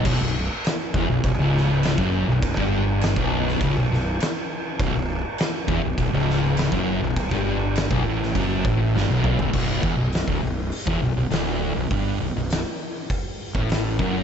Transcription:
<<
  \new Staff \with { instrumentName = "Distorted electric guitar" } { \clef bass \time 4/4 \key b \minor \tempo 4 = 101 b,,16 b,,8 r8. e,16 b,,16 b,,16 cis,4 fis,8 b,,16~ | b,,16 g,4 b,,8. cis,16 b,,16 b,,8 r4 | b,,16 b,,8 r8. e,16 b,,16 b,,16 cis,4 fis,8 b,,16~ | b,,16 g,4 b,,16 a,8 fis,8 a,8 g,16 b,,8 cis,16 |
b,,8 e,16 b,,8 d,16 b,,8 r16 e,16 b,,16 b,,16 d,8. b,,16 | g,8 b,,16 b,,8 r4. a,8. fis,8 | }
  \new Staff \with { instrumentName = "Fingered electric bass" } { \clef bass \time 4/4 \key b \minor b,,,16 b,,,8 r8. e,,16 b,,,16 b,,,16 cis,,4 fis,,8 b,,,16~ | b,,,16 g,,4 b,,,8. cis,,16 b,,,16 b,,,8 r4 | b,,,16 b,,,8 r8. e,,16 b,,,16 b,,,16 cis,,4 fis,,8 b,,,16~ | b,,,16 g,,4 b,,,16 a,,8 fis,,8 a,,8 g,,16 b,,,8 cis,,16 |
b,,,8 e,,16 b,,,8 d,,16 b,,,8 r16 e,,16 b,,,16 b,,,16 d,,8. b,,,16 | g,,8 b,,,16 b,,,8 r4. a,,8. fis,,8 | }
  \new DrumStaff \with { instrumentName = "Drums" } \drummode { \time 4/4 <cymc bd>4 <cymc sn>8 bd8 <cymc bd>8 sn8 <cymc sn>16 bd8. | <cymc bd>16 bd8. <cymc sn>16 bd8 sn16 <cymc bd>8 sn8 <cymc sn>4 | <cymc bd>4 <cymc sn>8 bd8 <cymc bd>8 sn8 <cymc sn>16 bd8. | <cymc bd>16 bd8. <cymc sn>16 bd8 sn16 <cymc bd>8 bd8 sn8 toml16 tomfh16 |
<cymc bd>8 bd8 <hho sn>16 bd8. hho16 bd8. <hho sn>4 | <hho bd>4 <hho sn>4 <hho bd>8. bd16 <hho sn>8 bd8 | }
>>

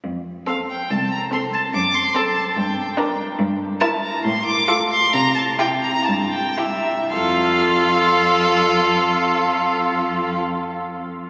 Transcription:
<<
  \new Staff \with { instrumentName = "Violin" } { \time 4/4 \key f \major \tempo 4 = 132 r4 f''8 g''8 a''8 bes''8 c'''8 a''8 | d'''8 c'''8 a''8 a''8 g''4. r8 | r4 a''8 bes''8 c'''8 d'''8 d'''8 c'''8 | bes''8 a''8 g''8 bes''16 bes''16 a''8 g''8 e''4 |
f''1~ | f''1 | }
  \new Staff \with { instrumentName = "Violin" } { \time 4/4 \key f \major r4 a'4 r4 a'4 | r4 a'4 r4 bes'4 | r4 bes'4 r4 a'4 | r4 g'4 r4 g'4 |
a'1~ | a'1 | }
  \new Staff \with { instrumentName = "Viola" } { \time 4/4 \key f \major r4 c'4 r4 c'4 | r4 c'4 r4 d'4 | r4 e'4 r4 f'4 | r4 e'4 r4 e'4 |
f'1~ | f'1 | }
  \new Staff \with { instrumentName = "Cello" } { \clef bass \time 4/4 \key f \major f,4 r4 c,4 r4 | fis,4 r4 g,4 r4 | g,4 r4 a,4 r4 | c4 r4 g,4 r4 |
f,1~ | f,1 | }
>>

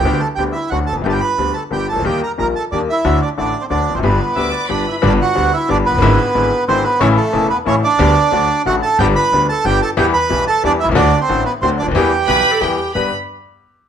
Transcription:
<<
  \new Staff \with { instrumentName = "Violin section" } { \time 3/4 \key g \major \tempo 4 = 182 r2. | r2. | r2. | r2. |
r4 d'''4 b''4 | r2. | r2. | r2. |
r2. | r2. | r2. | r2. |
r4 b''4 g''4 | b''8 r2 r8 | }
  \new Staff \with { instrumentName = "Bandoneon" } { \time 3/4 \key g \major << { g''8 a''8 g''8 e''8 fis''8 a''8 | g''32 a''32 g''16 b''4 a''8 g''8 a''8 | g''8 bes''8 bes''8 a''8 d''8 e''8~ | e''8 d''8 d''8. c''16 d''8. c''16 |
b'2 d''8 e''8 | d''8 fis''4 e''8 d''8 b'8~ | b'2 c''8 b'8 | cis''8 a'4 b'8 cis''8 d''8~ |
d''2 fis''8 a''8 | g''8 b''4 a''8 g''8 a''8 | g''8 b''4 a''8 d''8 e''8 | d''8. c''8. b'8 c''8 d''8 |
g''2 r4 | r2. | } \\ { g'8 a'8 g'8 e'8 fis'8 a'8 | g'16 g'16 b'4 a'8 g'8 a'8 | g'8 bes'8 bes'8 a'8 d'8 e'8~ | e'8 d'8 d'8. c'16 d'8. c'16 |
b2 d'8 e'8 | d'8 fis'4 e'8 d'8 b8~ | b2 c'8 b8 | cis'8 a4 b8 cis'8 d'8~ |
d'2 fis'8 a'8 | g'8 b'4 a'8 g'8 a'8 | g'8 b'4 a'8 d'8 e'8 | d'8. c'8. b8 c'8 d'8 |
g'2 r4 | r2. | } >> }
  \new Staff \with { instrumentName = "Clarinet" } { \time 3/4 \key g \major r2. | r2. | r2. | r2. |
r4 e''8 d''8 b'4 | r2. | r2. | r2. |
r2. | r2. | r2. | r2. |
r4 b'8. a'16 g'4 | b'8 r2 r8 | }
  \new Staff \with { instrumentName = "Grand piano" } { \clef bass \time 3/4 \key g \major <d, d g b g'>8 r8 <d, d g b g'>8 r8 <d, d fis a fis'>8 r32 e,32 f,32 fis,32 | <g,, g, d g b g'>8 r8 <d, d g b g'>8 r8 <g,, g, d g b g'>8 r32 c,32 cis,32 d,32 | <ees, ees g bes g'>8 r8 <bes,, bes, ees g bes g'>8 r8 <ees, ees g bes g'>8 r8 | <d, d fis a fis'>8 r8 <a,, a, d fis a fis'>8 r8 <d, d fis a fis'>8 r32 e,32 f,32 fis,32 |
<g,, g, d g b g'>8 r8 <d, d g b g'>8 r8 <g,, g, d g b g'>8 r8 | <g,, g, d g b g'>8 r8 <d, d g b g'>8 r8 <g,, g, d g b g'>8 r32 f,,32 fis,,32 g,,32 | <gis,, gis, d gis b e'>8 r8 <gis,, gis, d gis b e'>8 r8 <gis,, gis, d gis b e'>8 r8 | <a,, a, cis e a e'>8 r8 <e,, e, cis e a e'>8 r8 <a,, a, cis e a e'>8 r8 |
<d, d g b g'>8 r8 <d, d fis a fis'>8 r8 <a,, a, d fis a fis'>8 r8 | <g,, g, d g b g'>8 r8 <d, d g b g'>8 r8 <g,, g, d g b g'>8 r8 | <e, e g b g'>8 r8 <b,, b, e g b g'>8 r8 <e, e g b g'>8 r32 b,,32 c,32 cis,32 | <d, d fis a fis'>8 r8 <a,, a, d fis a fis'>8 r8 <d, d fis a fis'>8 r32 cis,32 d,32 ees,32 |
<e, e g b g'>8 r8 <b,, b, e g b g'>8 r8 <e, e g b g'>8 r8 | <g, b d' g'>8 r2 r8 | }
  \new Staff \with { instrumentName = "Upright bass" } { \clef bass \time 3/4 \key g \major d,16. r8 r32 d,16. r8 r32 d,16. r16 e,,32 f,,32 fis,,32 | g,,16. r8 r32 d,16. r8 r32 g,,16. r16 c,32 cis,32 d,32 | ees,16. r8 r32 bes,,16. r8 r32 ees,16. r8 r32 | d,16. r8 r32 a,,16. r8 r32 d,16. r16 e,,32 f,,32 fis,,32 |
g,,16. r8 r32 d,16. r8 r32 g,,16. r8 r32 | g,,16. r8 r32 d,16. r8 r32 g,,16. r16 f,,32 fis,,32 g,,32 | gis,,16. r8 r32 gis,,16. r8 r32 gis,,16. r8 r32 | a,,16. r8 r32 e,,16. r8 r32 a,,16. r8 r32 |
d,16. r8 r32 d,16. r8 r32 a,,16. r8 r32 | g,,16. r8 r32 d,16. r8 r32 g,,16. r8 r32 | e,16. r8 r32 b,,16. r8 r32 e,16. r16 b,,32 c,32 cis,32 | d,16. r8 r32 a,,16. r8 r32 d,16. r16 cis,32 d,32 ees,32 |
e,16. r8 r32 b,,16. r8 r32 e,16. r8 r32 | g,,8 r2 r8 | }
>>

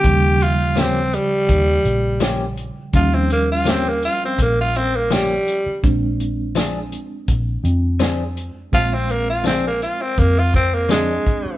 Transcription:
<<
  \new Staff \with { instrumentName = "Clean electric guitar" } { \time 4/4 \key ees \major \tempo 4 = 83 r4 <f bes des' g'>8 r4. <f bes des' g'>8 r8 | r4 <f bes des' g'>8 r4. <f bes des' g'>8 r8 | r4 <f c' d' aes'>8 r4. <f c' d' aes'>8 r8 | r4 <f c' d' aes'>8 r4. <f c' d' aes'>8 r8 | }
  \new Staff \with { instrumentName = "Tenor saxophone" } { \time 4/4 \key ees \major g'8 f'8 c'8 g2 r8 | f'16 c'16 bes16 f'16 c'16 bes16 f'16 c'16 bes16 f'16 c'16 bes16 g4 | r1 | f'16 c'16 bes16 f'16 c'16 bes16 f'16 c'16 bes16 f'16 c'16 bes16 aes4 | }
  \new Staff \with { instrumentName = "Reed electric piano" } { \clef bass \time 4/4 \key ees \major <des f g>1 | <f g des'>1 | <aes c' d'>1 | <aes c' f'>2. <aes c' d'>4 | }
  \new Staff \with { instrumentName = "Fingered electric bass" } { \clef bass \time 4/4 \key ees \major ees,2 ees,8 bes,,4. | ees,2 bes,,4.~ bes,,16 r16 | bes,,2 bes,,8 f,4. | bes,,2 f,4.~ f,16 r16 | }
  \new DrumStaff \with { instrumentName = "Drums" } \drummode { \time 4/4 <hh bd>8 hh8 <hh sn tamb>8 hh8 <hh bd>8 hh8 <hh sn tamb>8 hh8 | <hh bd>8 hh8 <hh sn tamb>8 hh8 <hh bd>8 hh8 <hh sn tamb>8 hh8 | <hh bd>8 hh8 <hh sn tamb>8 hh8 <hh bd>8 hh8 <hh sn tamb>8 hh8 | <hh bd>8 hh8 <hh sn tamb>8 hh8 <hh bd>8 <hh bd>8 <hh sn tamb>8 <hh bd>8 | }
>>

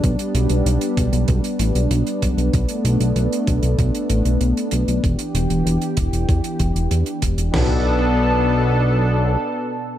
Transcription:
<<
  \new Staff \with { instrumentName = "Analog synth pad" } { \time 4/4 \key b \minor \tempo 4 = 96 << { g1 | a1 | <e g'>1 | <b, b d' a'>1 | } \\ { <b d'>1~ | <b d'>1~ | <b d'>1 | r1 | } >> }
  \new Staff \with { instrumentName = "Analog synth bass" } { \clef bass \time 4/4 \key b \minor b,,16 r16 b,,16 b,,16 b,,16 r16 b,,16 b,,16 b,,16 r16 a,,16 b,,16 b,,16 r16 b,,16 b,,16 | b,,16 r16 b,,16 b,,16 b,,16 r16 b,,16 b,,16 b,,16 r16 a,,16 b,,16 b,,16 r16 b,,16 b,,16 | e,,16 r16 e,,16 e,,16 e,,16 r16 e,,16 e,,16 e,16 r16 e,,16 e,,16 e,16 r16 e,,16 e,,16 | b,,2. r4 | }
  \new DrumStaff \with { instrumentName = "Drums" } \drummode { \time 4/4 <hh bd>16 hh16 hh16 hh16 hh16 hh16 <hh bd>16 hh16 <hh bd>16 hh16 hh16 hh16 hh16 hh16 <hh bd>16 hh16 | <hh bd>16 hh16 hh16 hh16 hh16 hh16 <hh bd>16 hh16 <hh bd>16 hh16 hh16 hh16 hh16 hh16 hh16 hh16 | <hh bd>16 hh16 hh16 hh16 hh16 hh16 <hh bd>16 hh16 <hh bd>16 hh16 <hh bd>16 hh16 hh16 hh16 <hh bd>16 hh16 | <cymc sn tomfh>4 r4 r4 r4 | }
>>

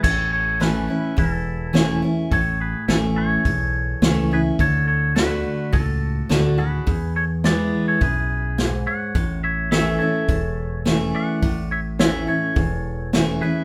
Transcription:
<<
  \new Staff \with { instrumentName = "Pedal steel guitar" } { \time 4/4 \key a \major \tempo 4 = 105 r1 | r1 | r1 | r1 |
r4 <a' e''>2.~ | <a' e''>1 | }
  \new Staff \with { instrumentName = "Clean electric guitar" } { \time 4/4 \key a \major <a' cis''>8 <a' cis''>8 <e' b'>4 <e' a'>4. r8 | <a' cis''>8 <gis' b'>8 <e' a'>8 <a' cis''>2 <gis' b'>8 | <a' cis''>8 <a' cis''>8 <fis' b'>4 <fis' a'>4. <gis' b'>8~ | <gis' b'>8 <a' cis''>8 <b' d''>8. <a' cis''>16 <gis' b'>4. <cis'' fis''>8~ |
<cis'' fis''>8 <cis'' e''>8 <cis'' e''>8 <a' cis''>4. r8 <d'' fis''>8~ | <d'' fis''>8 <cis'' e''>8 <cis'' e''>8 <a' cis''>4. r8 <gis' b'>8 | }
  \new Staff \with { instrumentName = "Steel-string acoustic guitar" } { \time 4/4 \key a \major << { r4 <e a cis' e'>8 <cis' e'>8 r4 <e a cis' e'>8 <cis' e'>8 | r4 <e a cis' e'>4 r4 <e a cis' e'>8 <cis' e'>8 | r4 <d a d' fis'>4 r4 <d a d' fis'>8 <d' fis'>8 | r4 <e gis b e'>4 r2 |
r4 <e a cis' e'>8 <cis' e'>8 r4 <e a cis' e'>4 | r4 <e a cis' e'>8 <cis' e'>8 r4 <e a cis' e'>8 <cis' e'>8 | } \\ { a,2 e,2 | a,2 e,2 | d2 a,2 | e,2 fis,4 gis,4 |
a,2 e,2 | a,2 e,2 | } >> }
  \new Staff \with { instrumentName = "Fingered electric bass" } { \clef bass \time 4/4 \key a \major a,,2 e,,2 | a,,4 a,,4 b,,4 cis,4 | d,2 cis,4 d,4 | e,2 b,,2 |
a,,2 e,,2 | a,,2 e,,2 | }
  \new DrumStaff \with { instrumentName = "Drums" } \drummode { \time 4/4 <cymc bd>4 <hho sn>4 <hho bd>4 <hho sn>4 | <hho bd>4 <hho sn>4 <hho bd>4 <hho sn>4 | <hho bd>4 <hho sn>4 <hho bd>4 <hho sn>4 | <hho bd>4 <hho sn>4 <hho bd>4 <hho sn>4 |
<hho bd>4 <hho sn>4 <hho bd>4 <hho sn>4 | <hho bd>4 <hho sn>4 <hho bd>4 <hho sn>4 | }
>>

